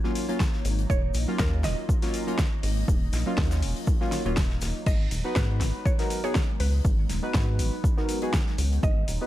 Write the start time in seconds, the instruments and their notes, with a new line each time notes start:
Already playing: analog synth pad F#3 A#3 D#4 C#5
0.04 synth stab F#3 A#3 C#4 F4, snare
0.15 open hi-hat, shaker
0.29 synth stab F#3 A#3 C#4 F4, closed hi-hat
0.40 kick, snare, shaker
0.53 snare
0.65 analog synth bass G#1, analog synth pad D#5, open hi-hat, shaker
0.78 closed hi-hat
0.90 analog synth bass D#1, synth pluck C#5, kick, shaker
1.14 analog synth bass A#1, open hi-hat, shaker
1.28 synth stab F#3 A#3 C#4 F4
1.39 analog synth bass D#2, synth pluck A#4, kick, snare, shaker
1.64 analog synth bass D#1, synth pluck D#5, snare, open hi-hat, shaker
1.89 kick, shaker
2.02 synth stab F#3 A#3 C#4 F4, snare, open hi-hat
2.14 open hi-hat, shaker
2.27 synth stab F#3 A#3 C#4 F4, closed hi-hat
2.38 kick, snare, shaker
2.63 analog synth bass G#1, open hi-hat
2.88 analog synth bass D#1, kick, shaker
3.13 analog synth bass A#1, snare, open hi-hat, shaker
3.26 synth stab F#3 A#3 C#4 F4
3.38 analog synth bass D#2, kick, snare, open hi-hat
3.51 snare, shaker
3.62 analog synth bass D#1, open hi-hat
3.76 open hi-hat
3.87 kick, shaker
4.00 synth stab F#3 A#3 C#4 F4, snare
4.12 snare, open hi-hat, shaker
4.25 analog synth bass D#1, synth stab F#3 A#3 C#4 F4, closed hi-hat
4.37 kick, snare, open hi-hat, shaker
4.50 snare
4.61 analog synth bass D#1, snare, open hi-hat, shaker
4.86 analog synth bass G#1, analog synth pad F#3 G#3 B3 D#4, synth pluck D#5, kick, crash, shaker
5.11 analog synth bass D#1, open hi-hat, shaker
5.24 synth stab B3 D#4 F#4 B4
5.36 analog synth bass G#2, synth pluck B4, kick, snare, shaker
5.61 analog synth bass G#1, snare, open hi-hat, shaker
5.85 synth pluck C#5, kick, shaker
5.99 synth stab B3 D#4 F#4 A#4, snare, open hi-hat
6.10 open hi-hat, shaker
6.24 synth stab B3 D#4 F#4 G#4, synth pluck C#5, closed hi-hat
6.35 kick, snare, shaker
6.60 analog synth bass C#2, synth pluck B4, open hi-hat
6.85 analog synth bass G#1, kick, shaker
7.10 analog synth bass D#1, snare, open hi-hat, shaker
7.23 synth stab B3 D#4 F#4 B4
7.34 analog synth bass G#2, kick, snare, shaker
7.59 analog synth bass G#1, open hi-hat, shaker
7.84 kick, shaker
7.97 synth stab B3 D#4 F#4 A#4, snare
8.09 open hi-hat, shaker
8.22 synth stab B3 D#4 F#4 G#4, closed hi-hat
8.33 kick, snare, shaker
8.47 snare
8.58 analog synth bass C#2, open hi-hat, shaker
8.72 closed hi-hat
8.83 analog synth bass G#1, synth pluck D#5, kick, shaker
9.08 analog synth bass D#1, open hi-hat, shaker
9.21 synth stab B3 D#4 F#4 B4